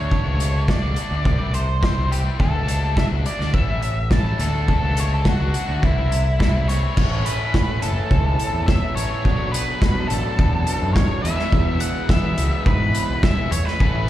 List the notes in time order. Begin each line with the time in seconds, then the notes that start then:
Already playing: D2 D4 F#4 C#5
0.10 D3 A3 D4 F#4, kick
0.26 C#2
0.39 D3 A3 D4 F#4, closed hi-hat
0.68 D3 A3 D4 F#4 D5, kick, snare
0.82 C#2 A3 D4 F#4
0.96 D3 A3 D4 F#4, closed hi-hat
1.10 D2 A3 D4 F#4
1.24 C2 C3 E3 G3 C4 G4 D5, kick
1.38 C2 G3 C4 G4
1.53 C5, muted distorted electric guitar stroke, closed hi-hat
1.81 C3 E3 G3 C4 G4, kick, snare
1.96 G3 C4 G4
2.10 E3 G3 C4 G4, closed hi-hat
2.24 G3 C4 G4
2.38 D2 D3 A3 D4 F#4 A4, kick
2.54 C#2
2.66 D3 A3 D4 F#4, closed hi-hat
2.95 D3 A3 D4 F#4 E5, kick, snare
3.09 C#2 A3 D4 F#4
3.24 D3 A3 D4 F#4 D5, closed hi-hat
3.38 D2 A3 D4 F#4, snare
3.52 A1 A2 E3 A3 C#4 E4 E5, kick
3.67 A1 A3 C#4 E4
3.81 muted distorted electric guitar stroke, closed hi-hat
4.10 A2 E3 A3 C#4 E4 A5, kick, snare
4.24 A3 C#4 E4
4.38 D2 D3 A3 D4 F#4 A4, snare, closed hi-hat
4.52 A3 D4 F#4
4.66 D3 A3 D4 F#4 A4, kick
4.82 C#2
4.95 D3 A3 D4 F#4, closed hi-hat
5.00 C#5
5.14 A4
5.24 D3 A3 D4 F#4, kick, snare
5.28 F#4
5.39 C#2 A3 D4 F#4
5.53 D3 A3 D4 F#4, closed hi-hat
5.67 D2 A3 D4 F#4
5.81 C2 C3 E3 G3 C4 E4, kick
5.95 C2 G3 C4 E4
6.11 muted distorted electric guitar stroke, closed hi-hat
6.39 C3 E3 G3 C4 E4 E5, kick, snare
6.53 G3 C4 E4
6.67 E3 G3 C4 E4 C#5, snare, closed hi-hat
6.82 G3 C4 E4
6.96 A1 A2 E3 A3 C#4 E4 A4, kick, crash
7.25 B4, closed hi-hat
7.54 A2, kick, snare
7.82 F#1 A2 E3 A3 C#4 E4 A4, closed hi-hat
8.11 C#2, kick
8.39 closed hi-hat
8.53 E2
8.66 E5, kick, snare
8.95 A1 A2 E3 A3 C#4 A4 C#5, closed hi-hat
9.23 B1 B2 F#3 B3 D4 F#4, kick
9.52 B4, closed hi-hat
9.82 B2, kick, snare
10.08 A1 B2 F#3 B3 D4 F#4 A4, closed hi-hat
10.39 E2, kick
10.67 closed hi-hat
10.82 F#2
10.94 C#5, kick, snare
11.23 E2 B2 E3 G#3 B3 E5, closed hi-hat
11.27 E4
11.39 snare
11.52 E2, kick
11.80 F#5, closed hi-hat
12.08 E2 B2 E3 G#3 B3 E4 E5, kick, snare
12.37 C#2, closed hi-hat
12.66 G#2 B4, kick
12.95 closed hi-hat
13.09 B1
13.23 E2 B2 E3 G#3 B3 E4 E5, kick, snare
13.51 E2 C#5, closed hi-hat
13.65 B4, snare
13.80 A1 A2 E3 A3 C#4 E4, kick